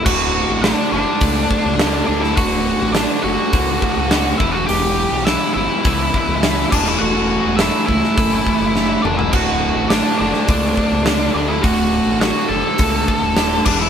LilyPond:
<<
  \new Staff \with { instrumentName = "Lead electric guitar" } { \time 4/4 \key d \major \tempo 4 = 104 <fis' fis''>4 <d' d''>8 <d' d''>2 <d' d''>16 <e' e''>16 | <fis' fis''>4 <d' d''>8 <fis' fis''>2 <e' e''>16 <fis' fis''>16 | <g' g''>4 <e' e''>8 <e' e''>2 <d' d''>16 <e' e''>16 | <fis' fis''>4 <e' e''>8 <e' e''>2 <d' d''>16 <e' e''>16 |
<fis' fis''>4 <d' d''>8 <d' d''>2 <d' d''>16 <e' e''>16 | <fis' fis''>4 <fis' fis''>8 <a' a''>2 <d' d''>16 <e' e''>16 | }
  \new Staff \with { instrumentName = "Distorted electric guitar" } { \clef bass \time 4/4 \key d \major <d, a, d>4 <d, a, d>8 <d, a, d>8 <d, a, d>4 <d, a, d>8 <d, a, d>8 | <d, a, d>4 <d, a, d>8 <d, a, d>8 <d, a, d>4 <d, a, d>8 <e, b, e>8 | <e, b, e>4 <e, b, e>8 <e, b, e>8 <e, b, e>4 <e, b, e>8 <a, e a>8 | <a, e a>4 <a, e a>8 <a, e a>8 <a, e a>4 <a, e a>8 <a, e a>8 |
<d, a, d>4 <d, a, d>8 <d, a, d>8 <d, a, d>4 <d, a, d>8 <d, a, d>8 | <d, a, d>4 <d, a, d>8 <d, a, d>8 <d, a, d>4 <d, a, d>8 <e, b, e>8 | }
  \new Staff \with { instrumentName = "Picked electric bass" } { \clef bass \time 4/4 \key d \major d,,8. a,,8 r16 fis,,16 r16 cis,8 r16 cis,8. d,8 | d,,8. a,,8 r16 fis,,16 r16 cis,8 r16 cis,8. e,,8 | e,,8. b,,8 r16 g,,16 r16 cis,8 r16 cis,8. e,,8 | e,,8. e,,8 r16 cis,16 r16 fis,,8 r16 fis,,8. fis,,16 e,,16 |
d,,8. a,,8 r16 fis,,16 r16 cis,8 r16 cis,8. d,8 | d,,8. a,,8 r16 fis,,16 r16 cis,8 r16 ees,,8. e,,8 | }
  \new DrumStaff \with { instrumentName = "Drums" } \drummode { \time 4/4 <cymc bd>4 <hho sn>4 <hho bd>8 bd8 <hho sn>8. sn16 | <hho bd>4 <hho sn>4 <hho bd>8 bd8 <hho sn>8 bd8 | hho4 <hho sn>4 <hho bd>8 bd8 <hho sn>8 <cymc bd>16 sn16 | r4 <hho sn>8 bd16 sn16 <hho bd>8 bd8 sn8 toml16 tomfh16 |
<cymc bd>4 <hho sn>8. sn16 <hho bd>8 bd8 <hho sn>4 | <hho bd>4 <hho sn>4 <hho bd>8 bd8 <hho sn>8 <cymc bd>8 | }
>>